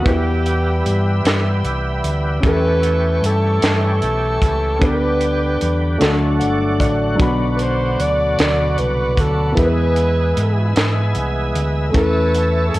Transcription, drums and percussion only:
0, 0, Header, 1, 2, 480
1, 0, Start_track
1, 0, Tempo, 792602
1, 36, Time_signature, 6, 3, 24, 8
1, 7747, End_track
2, 0, Start_track
2, 0, Title_t, "Drums"
2, 36, Note_on_c, 9, 36, 94
2, 37, Note_on_c, 9, 42, 57
2, 97, Note_off_c, 9, 36, 0
2, 98, Note_off_c, 9, 42, 0
2, 278, Note_on_c, 9, 42, 46
2, 338, Note_off_c, 9, 42, 0
2, 519, Note_on_c, 9, 42, 50
2, 579, Note_off_c, 9, 42, 0
2, 758, Note_on_c, 9, 42, 72
2, 766, Note_on_c, 9, 38, 85
2, 819, Note_off_c, 9, 42, 0
2, 827, Note_off_c, 9, 38, 0
2, 997, Note_on_c, 9, 42, 41
2, 1057, Note_off_c, 9, 42, 0
2, 1237, Note_on_c, 9, 42, 55
2, 1298, Note_off_c, 9, 42, 0
2, 1474, Note_on_c, 9, 36, 97
2, 1475, Note_on_c, 9, 42, 58
2, 1535, Note_off_c, 9, 36, 0
2, 1535, Note_off_c, 9, 42, 0
2, 1714, Note_on_c, 9, 42, 43
2, 1775, Note_off_c, 9, 42, 0
2, 1961, Note_on_c, 9, 42, 53
2, 2021, Note_off_c, 9, 42, 0
2, 2195, Note_on_c, 9, 42, 71
2, 2203, Note_on_c, 9, 38, 84
2, 2255, Note_off_c, 9, 42, 0
2, 2263, Note_off_c, 9, 38, 0
2, 2434, Note_on_c, 9, 42, 41
2, 2495, Note_off_c, 9, 42, 0
2, 2675, Note_on_c, 9, 36, 67
2, 2678, Note_on_c, 9, 42, 52
2, 2735, Note_off_c, 9, 36, 0
2, 2738, Note_off_c, 9, 42, 0
2, 2916, Note_on_c, 9, 36, 95
2, 2917, Note_on_c, 9, 42, 58
2, 2977, Note_off_c, 9, 36, 0
2, 2977, Note_off_c, 9, 42, 0
2, 3154, Note_on_c, 9, 42, 47
2, 3215, Note_off_c, 9, 42, 0
2, 3400, Note_on_c, 9, 42, 53
2, 3460, Note_off_c, 9, 42, 0
2, 3640, Note_on_c, 9, 42, 70
2, 3648, Note_on_c, 9, 38, 86
2, 3700, Note_off_c, 9, 42, 0
2, 3708, Note_off_c, 9, 38, 0
2, 3880, Note_on_c, 9, 42, 43
2, 3941, Note_off_c, 9, 42, 0
2, 4117, Note_on_c, 9, 36, 65
2, 4124, Note_on_c, 9, 42, 55
2, 4178, Note_off_c, 9, 36, 0
2, 4184, Note_off_c, 9, 42, 0
2, 4358, Note_on_c, 9, 36, 94
2, 4361, Note_on_c, 9, 42, 59
2, 4419, Note_off_c, 9, 36, 0
2, 4421, Note_off_c, 9, 42, 0
2, 4598, Note_on_c, 9, 42, 45
2, 4658, Note_off_c, 9, 42, 0
2, 4844, Note_on_c, 9, 42, 50
2, 4904, Note_off_c, 9, 42, 0
2, 5080, Note_on_c, 9, 42, 74
2, 5088, Note_on_c, 9, 38, 88
2, 5140, Note_off_c, 9, 42, 0
2, 5148, Note_off_c, 9, 38, 0
2, 5316, Note_on_c, 9, 42, 41
2, 5377, Note_off_c, 9, 42, 0
2, 5556, Note_on_c, 9, 36, 62
2, 5561, Note_on_c, 9, 42, 54
2, 5616, Note_off_c, 9, 36, 0
2, 5622, Note_off_c, 9, 42, 0
2, 5796, Note_on_c, 9, 42, 55
2, 5797, Note_on_c, 9, 36, 91
2, 5856, Note_off_c, 9, 42, 0
2, 5857, Note_off_c, 9, 36, 0
2, 6032, Note_on_c, 9, 42, 46
2, 6093, Note_off_c, 9, 42, 0
2, 6279, Note_on_c, 9, 42, 53
2, 6339, Note_off_c, 9, 42, 0
2, 6515, Note_on_c, 9, 42, 75
2, 6523, Note_on_c, 9, 38, 88
2, 6576, Note_off_c, 9, 42, 0
2, 6584, Note_off_c, 9, 38, 0
2, 6752, Note_on_c, 9, 42, 43
2, 6813, Note_off_c, 9, 42, 0
2, 6998, Note_on_c, 9, 42, 53
2, 7059, Note_off_c, 9, 42, 0
2, 7234, Note_on_c, 9, 36, 93
2, 7236, Note_on_c, 9, 42, 59
2, 7294, Note_off_c, 9, 36, 0
2, 7297, Note_off_c, 9, 42, 0
2, 7475, Note_on_c, 9, 42, 45
2, 7535, Note_off_c, 9, 42, 0
2, 7716, Note_on_c, 9, 42, 50
2, 7747, Note_off_c, 9, 42, 0
2, 7747, End_track
0, 0, End_of_file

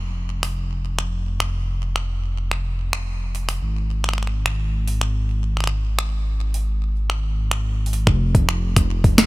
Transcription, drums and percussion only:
0, 0, Header, 1, 2, 480
1, 0, Start_track
1, 0, Tempo, 555556
1, 1212, Time_signature, 4, 2, 24, 8
1, 8001, End_track
2, 0, Start_track
2, 0, Title_t, "Drums"
2, 372, Note_on_c, 9, 26, 50
2, 372, Note_on_c, 9, 46, 69
2, 458, Note_off_c, 9, 26, 0
2, 458, Note_off_c, 9, 46, 0
2, 852, Note_on_c, 9, 26, 48
2, 938, Note_off_c, 9, 26, 0
2, 1212, Note_on_c, 9, 26, 67
2, 1298, Note_off_c, 9, 26, 0
2, 1692, Note_on_c, 9, 26, 49
2, 1778, Note_off_c, 9, 26, 0
2, 2172, Note_on_c, 9, 26, 48
2, 2259, Note_off_c, 9, 26, 0
2, 2532, Note_on_c, 9, 26, 72
2, 2619, Note_off_c, 9, 26, 0
2, 2892, Note_on_c, 9, 46, 54
2, 2979, Note_off_c, 9, 46, 0
2, 3012, Note_on_c, 9, 26, 47
2, 3012, Note_on_c, 9, 46, 67
2, 3099, Note_off_c, 9, 26, 0
2, 3099, Note_off_c, 9, 46, 0
2, 3492, Note_on_c, 9, 26, 42
2, 3533, Note_off_c, 9, 26, 0
2, 3533, Note_on_c, 9, 26, 35
2, 3573, Note_off_c, 9, 26, 0
2, 3573, Note_on_c, 9, 26, 29
2, 3612, Note_off_c, 9, 26, 0
2, 3612, Note_on_c, 9, 26, 25
2, 3652, Note_off_c, 9, 26, 0
2, 3652, Note_on_c, 9, 26, 20
2, 3692, Note_off_c, 9, 26, 0
2, 3692, Note_on_c, 9, 26, 17
2, 3778, Note_off_c, 9, 26, 0
2, 3852, Note_on_c, 9, 26, 67
2, 3938, Note_off_c, 9, 26, 0
2, 4212, Note_on_c, 9, 46, 70
2, 4299, Note_off_c, 9, 46, 0
2, 4332, Note_on_c, 9, 26, 47
2, 4418, Note_off_c, 9, 26, 0
2, 4812, Note_on_c, 9, 26, 22
2, 4842, Note_off_c, 9, 26, 0
2, 4842, Note_on_c, 9, 26, 27
2, 4872, Note_off_c, 9, 26, 0
2, 4872, Note_on_c, 9, 26, 33
2, 4902, Note_off_c, 9, 26, 0
2, 4902, Note_on_c, 9, 26, 39
2, 4989, Note_off_c, 9, 26, 0
2, 5172, Note_on_c, 9, 26, 66
2, 5258, Note_off_c, 9, 26, 0
2, 5652, Note_on_c, 9, 46, 74
2, 5738, Note_off_c, 9, 46, 0
2, 6133, Note_on_c, 9, 26, 47
2, 6219, Note_off_c, 9, 26, 0
2, 6492, Note_on_c, 9, 26, 71
2, 6579, Note_off_c, 9, 26, 0
2, 6792, Note_on_c, 9, 46, 60
2, 6853, Note_off_c, 9, 46, 0
2, 6853, Note_on_c, 9, 46, 71
2, 6939, Note_off_c, 9, 46, 0
2, 6972, Note_on_c, 9, 36, 100
2, 6973, Note_on_c, 9, 26, 54
2, 7059, Note_off_c, 9, 26, 0
2, 7059, Note_off_c, 9, 36, 0
2, 7212, Note_on_c, 9, 36, 126
2, 7213, Note_on_c, 9, 42, 56
2, 7299, Note_off_c, 9, 36, 0
2, 7300, Note_off_c, 9, 42, 0
2, 7333, Note_on_c, 9, 26, 80
2, 7419, Note_off_c, 9, 26, 0
2, 7572, Note_on_c, 9, 36, 109
2, 7573, Note_on_c, 9, 26, 56
2, 7573, Note_on_c, 9, 42, 82
2, 7659, Note_off_c, 9, 26, 0
2, 7659, Note_off_c, 9, 36, 0
2, 7659, Note_off_c, 9, 42, 0
2, 7812, Note_on_c, 9, 36, 107
2, 7813, Note_on_c, 9, 46, 58
2, 7899, Note_off_c, 9, 36, 0
2, 7899, Note_off_c, 9, 46, 0
2, 7932, Note_on_c, 9, 26, 83
2, 7932, Note_on_c, 9, 38, 124
2, 7932, Note_on_c, 9, 42, 100
2, 8001, Note_off_c, 9, 26, 0
2, 8001, Note_off_c, 9, 38, 0
2, 8001, Note_off_c, 9, 42, 0
2, 8001, End_track
0, 0, End_of_file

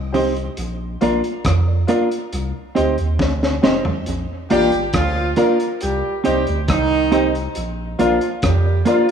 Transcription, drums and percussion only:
0, 0, Header, 1, 2, 480
1, 0, Start_track
1, 0, Key_signature, -2, "major"
1, 0, Tempo, 873362
1, 316, Time_signature, 4, 2, 24, 8
1, 5007, End_track
2, 0, Start_track
2, 0, Title_t, "Drums"
2, 78, Note_on_c, 9, 46, 53
2, 133, Note_off_c, 9, 46, 0
2, 201, Note_on_c, 9, 42, 52
2, 256, Note_off_c, 9, 42, 0
2, 314, Note_on_c, 9, 42, 78
2, 369, Note_off_c, 9, 42, 0
2, 557, Note_on_c, 9, 42, 71
2, 612, Note_off_c, 9, 42, 0
2, 681, Note_on_c, 9, 42, 53
2, 735, Note_off_c, 9, 42, 0
2, 794, Note_on_c, 9, 42, 83
2, 796, Note_on_c, 9, 36, 104
2, 803, Note_on_c, 9, 37, 107
2, 849, Note_off_c, 9, 42, 0
2, 851, Note_off_c, 9, 36, 0
2, 857, Note_off_c, 9, 37, 0
2, 1034, Note_on_c, 9, 42, 67
2, 1089, Note_off_c, 9, 42, 0
2, 1162, Note_on_c, 9, 42, 59
2, 1217, Note_off_c, 9, 42, 0
2, 1278, Note_on_c, 9, 42, 91
2, 1333, Note_off_c, 9, 42, 0
2, 1519, Note_on_c, 9, 42, 73
2, 1574, Note_off_c, 9, 42, 0
2, 1636, Note_on_c, 9, 42, 42
2, 1691, Note_off_c, 9, 42, 0
2, 1755, Note_on_c, 9, 36, 99
2, 1761, Note_on_c, 9, 38, 53
2, 1810, Note_off_c, 9, 36, 0
2, 1816, Note_off_c, 9, 38, 0
2, 1885, Note_on_c, 9, 38, 58
2, 1940, Note_off_c, 9, 38, 0
2, 1998, Note_on_c, 9, 38, 86
2, 2053, Note_off_c, 9, 38, 0
2, 2116, Note_on_c, 9, 43, 79
2, 2171, Note_off_c, 9, 43, 0
2, 2233, Note_on_c, 9, 42, 82
2, 2288, Note_off_c, 9, 42, 0
2, 2474, Note_on_c, 9, 42, 71
2, 2529, Note_off_c, 9, 42, 0
2, 2593, Note_on_c, 9, 42, 46
2, 2648, Note_off_c, 9, 42, 0
2, 2709, Note_on_c, 9, 42, 79
2, 2713, Note_on_c, 9, 36, 104
2, 2717, Note_on_c, 9, 37, 114
2, 2764, Note_off_c, 9, 42, 0
2, 2768, Note_off_c, 9, 36, 0
2, 2772, Note_off_c, 9, 37, 0
2, 2947, Note_on_c, 9, 42, 75
2, 3002, Note_off_c, 9, 42, 0
2, 3076, Note_on_c, 9, 42, 59
2, 3131, Note_off_c, 9, 42, 0
2, 3191, Note_on_c, 9, 42, 88
2, 3246, Note_off_c, 9, 42, 0
2, 3433, Note_on_c, 9, 42, 66
2, 3488, Note_off_c, 9, 42, 0
2, 3555, Note_on_c, 9, 42, 42
2, 3610, Note_off_c, 9, 42, 0
2, 3671, Note_on_c, 9, 42, 81
2, 3674, Note_on_c, 9, 36, 112
2, 3681, Note_on_c, 9, 37, 105
2, 3726, Note_off_c, 9, 42, 0
2, 3729, Note_off_c, 9, 36, 0
2, 3736, Note_off_c, 9, 37, 0
2, 3914, Note_on_c, 9, 42, 72
2, 3969, Note_off_c, 9, 42, 0
2, 4039, Note_on_c, 9, 42, 50
2, 4094, Note_off_c, 9, 42, 0
2, 4149, Note_on_c, 9, 42, 83
2, 4204, Note_off_c, 9, 42, 0
2, 4393, Note_on_c, 9, 42, 65
2, 4448, Note_off_c, 9, 42, 0
2, 4513, Note_on_c, 9, 42, 48
2, 4568, Note_off_c, 9, 42, 0
2, 4629, Note_on_c, 9, 42, 83
2, 4633, Note_on_c, 9, 36, 99
2, 4637, Note_on_c, 9, 37, 103
2, 4684, Note_off_c, 9, 42, 0
2, 4688, Note_off_c, 9, 36, 0
2, 4692, Note_off_c, 9, 37, 0
2, 4867, Note_on_c, 9, 42, 69
2, 4922, Note_off_c, 9, 42, 0
2, 5007, End_track
0, 0, End_of_file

